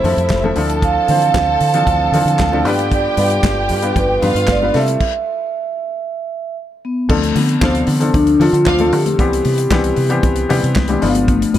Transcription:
Already playing: french horn section C3 A3, grand piano F3 A3 C4 E4 F4 A4, violin section E4 E5, vibraphone C5
0.04 fingered electric bass F2, grand piano F3 A3 C4 E4 A4, open hi-hat, muted conga, low conga
0.17 fingered electric bass F2, closed hi-hat
0.30 fingered electric bass F1, kick, snare, clap, closed hi-hat, high conga
0.44 grand piano F3 A3 C4 E4 A4, high conga
0.55 fingered electric bass D2, french horn section D3 C4, grand piano F3 C4 D4 E4 A4, violin section A4 A5, open hi-hat
0.70 closed hi-hat
0.82 vibraphone F5, kick, closed hi-hat
1.08 fingered electric bass D3, grand piano E3 F3 C4 D4 C5, vibraphone F5, open hi-hat, muted conga
1.22 closed hi-hat
1.34 fingered electric bass D2, kick, snare, clap, closed hi-hat, high conga
1.60 fingered electric bass D3, open hi-hat
1.74 grand piano E3 F3 C4 D4 A4, closed hi-hat
1.87 fingered electric bass D2, kick, closed hi-hat, muted conga
2.12 fingered electric bass D3, grand piano E3 F3 C4 D4 A4, open hi-hat, low conga
2.25 fingered electric bass D3, closed hi-hat
2.39 fingered electric bass D2, kick, snare, clap, closed hi-hat, high conga
2.52 grand piano F3 C4 D4 E4 A4, high conga
2.64 fingered electric bass G2, french horn section G3 B3 F4, grand piano G3 B3 D4 F4 B4, violin section G4 G5, open hi-hat
2.79 closed hi-hat
2.92 vibraphone D5, kick, closed hi-hat
3.17 fingered electric bass G2, grand piano G3 B3 D4 F4 B4, open hi-hat, muted conga
3.30 closed hi-hat
3.43 fingered electric bass G1, kick, snare, clap, closed hi-hat, high conga
3.69 fingered electric bass G2, open hi-hat
3.82 grand piano G3 B3 D4 F4 B4, closed hi-hat
3.96 fingered electric bass G1, vibraphone B4, kick, closed hi-hat, muted conga, low conga
4.22 fingered electric bass G2, grand piano G3 B3 D4 F4 B4, violin section F4 F5, open hi-hat, low conga
4.35 fingered electric bass G2, closed hi-hat
4.47 fingered electric bass G1, kick, snare, clap, closed hi-hat, high conga
4.52 vibraphone D5
4.62 grand piano G3 B3 D4 F4 B4, high conga
4.74 fingered electric bass C3, french horn section C3 A3 E4, grand piano G3 A3 C4 E4 A4, vibraphone E5, snare, open hi-hat
4.88 closed hi-hat
5.00 kick, crash
6.85 vibraphone B3
7.09 fingered electric bass D2, grand piano F3 A3 C4 D4 A4, vibraphone A3, kick, crash
7.24 closed hi-hat
7.36 fingered electric bass D3, vibraphone B3, open hi-hat, muted conga
7.49 closed hi-hat
7.61 fingered electric bass D2, grand piano C3 F3 A3 D4 A4, violin section D4 C5 F5, kick, snare, clap, high conga
7.75 closed hi-hat
7.87 fingered electric bass D3, open hi-hat
8.00 grand piano F3 A3 C4 D4 A4, closed hi-hat
8.14 fingered electric bass D2, vibraphone D4, kick, closed hi-hat, muted conga, low conga
8.27 closed hi-hat
8.40 fingered electric bass D3, grand piano F3 A3 C4 D4 A4, vibraphone F4, open hi-hat, muted conga, low conga
8.53 fingered electric bass D3, closed hi-hat
8.66 fingered electric bass D2, violin section D4 C5 F5, kick, snare, clap, high conga
8.79 grand piano F3 A3 C4 D4 A4, closed hi-hat, high conga
8.93 fingered electric bass D3, vibraphone G4, open hi-hat
9.06 closed hi-hat, high conga
9.19 fingered electric bass C2, grand piano E3 G3 B3 C4 G4, kick, closed hi-hat
9.33 closed hi-hat
9.45 fingered electric bass C3, open hi-hat, muted conga
9.58 closed hi-hat
9.71 fingered electric bass C2, grand piano E3 G3 B3 C4 G4, kick, snare, clap, high conga
9.84 closed hi-hat
9.96 fingered electric bass C3, open hi-hat
10.10 grand piano E3 G3 B3 C4 G4, closed hi-hat
10.23 fingered electric bass C2, kick, closed hi-hat, muted conga
10.36 closed hi-hat
10.49 fingered electric bass C3, grand piano E3 G3 B3 C4 G4, open hi-hat, low conga
10.64 fingered electric bass C3, closed hi-hat
10.76 fingered electric bass C2, kick, snare, clap, high conga
10.88 grand piano E3 G3 B3 C4 G4, closed hi-hat, high conga
11.02 fingered electric bass G1, grand piano D3 F3 G3 B3 E4, vibraphone B3, open hi-hat
11.09 grand piano F4
11.15 closed hi-hat, high conga
11.28 vibraphone A3, kick, closed hi-hat
11.42 closed hi-hat
11.54 fingered electric bass G2, open hi-hat, muted conga

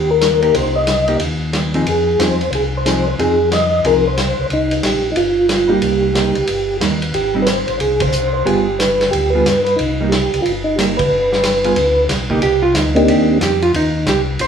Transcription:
Already playing: tonewheel organ D#2 G4
0.11 tonewheel organ A#4
0.21 snare, hi-hat pedal, ride
0.42 hollow-body jazz guitar A#3 D#4 G4, tonewheel organ A#4, ride
0.54 tonewheel organ C2 C5, ride
0.75 tonewheel organ D#5
0.87 snare, hi-hat pedal, ride
1.08 hollow-body jazz guitar A#3 D#4 G4, ride
1.20 tonewheel organ D#2, ride
1.53 snare, hi-hat pedal, ride
1.74 hollow-body jazz guitar F3 C4 D#4 G#4, ride
1.86 tonewheel organ F2 G#4, ride
2.19 tonewheel organ E2 C5, hollow-body jazz guitar F3 C4 D#4 G#4, snare, hi-hat pedal, ride
2.41 ride
2.52 tonewheel organ C2 G#4, ride
2.77 tonewheel organ C5
2.85 hollow-body jazz guitar F3 C4 D#4 G#4, snare, hi-hat pedal, ride
3.08 tonewheel organ C5
3.18 tonewheel organ F2 G#4, hollow-body jazz guitar F3 C4 D#4 G#4, ride
3.52 tonewheel organ D#5, snare, hi-hat pedal, ride
3.84 tonewheel organ C2 A#4, hollow-body jazz guitar F3 C4 D#4 G#4, ride
4.07 tonewheel organ C5
4.18 snare, hi-hat pedal, ride
4.38 tonewheel organ C2 C5
4.50 tonewheel organ C2 D#4, ride
4.71 ride
4.83 tonewheel organ A#1 G4, snare, hi-hat pedal, ride
5.12 tonewheel organ D#4
5.16 tonewheel organ G1 F4, ride
5.49 snare, hi-hat pedal, ride
5.68 hollow-body jazz guitar G3 A#3 D#4, tonewheel organ G4
5.82 tonewheel organ C2, ride
6.14 hollow-body jazz guitar G3 A#3 D#4, snare, hi-hat pedal, ride
6.35 tonewheel organ C2, ride
6.47 tonewheel organ G1, ride
6.80 tonewheel organ D#2, hollow-body jazz guitar G3 A#3 D#4, snare, hi-hat pedal, ride
7.02 ride
7.14 tonewheel organ G#1 G4, ride
7.34 hollow-body jazz guitar G3 C4 D#4
7.42 tonewheel organ B4
7.46 tonewheel organ C5, snare, hi-hat pedal, ride
7.68 tonewheel organ A1, ride
7.80 tonewheel organ C2 G#4, ride
8.00 tonewheel organ C5, kick, ride
8.12 hi-hat pedal
8.34 tonewheel organ C5
8.45 tonewheel organ G1 G4, hollow-body jazz guitar G3 B3 F4 G#4, ride
8.79 tonewheel organ B4, snare, hi-hat pedal, ride
9.01 snare, ride
9.11 tonewheel organ D2 G4, ride
9.30 tonewheel organ B4
9.35 hollow-body jazz guitar G3 B3 F4 G#4
9.46 tonewheel organ G2, snare, hi-hat pedal, ride
9.65 tonewheel organ B4, ride
9.76 tonewheel organ C2 D#4, ride
10.01 hollow-body jazz guitar G3 A#3 D#4
10.09 tonewheel organ G4, snare, hi-hat pedal, ride
10.33 tonewheel organ C2, ride
10.42 tonewheel organ G1 F4, ride
10.64 tonewheel organ D#4
10.76 hollow-body jazz guitar G3 A#3 D#4, tonewheel organ G4, snare, hi-hat pedal, ride
10.97 tonewheel organ B4, kick, ride
11.11 tonewheel organ G1
11.32 snare
11.44 snare, hi-hat pedal, ride
11.64 hollow-body jazz guitar G3 B3 F4 G#4, ride
11.76 tonewheel organ D2, ride
12.09 tonewheel organ B1, snare, hi-hat pedal, ride
12.30 hollow-body jazz guitar A#3 D#4 G4, kick
12.42 tonewheel organ C2, hollow-body jazz guitar G4, ride
12.62 hollow-body jazz guitar F4
12.75 tonewheel organ D2, hollow-body jazz guitar D#4, snare, hi-hat pedal, ride
12.95 tonewheel organ A#3 C4 D4 D#4 G4, ride
13.08 tonewheel organ D#2, hollow-body jazz guitar G4, ride
13.40 tonewheel organ F2, hollow-body jazz guitar G4, snare, hi-hat pedal, ride
13.62 hollow-body jazz guitar F4, ride
13.74 tonewheel organ D#2, hollow-body jazz guitar D#4, ride
14.06 tonewheel organ C2, hollow-body jazz guitar G4, snare, hi-hat pedal, ride
14.39 tonewheel organ A#1, hollow-body jazz guitar C5, ride

